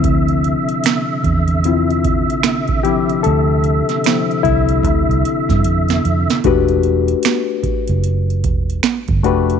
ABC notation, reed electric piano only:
X:1
M:4/4
L:1/8
Q:"Swing 16ths" 1/4=75
K:Em
V:1 name="Reed electric piano"
[=F,CE]2 z2 [CE=F] z2 [F,CEG] | A2 [=F,CE] E4 z | [A,DFGB]4 z3 [A,DFGB] |]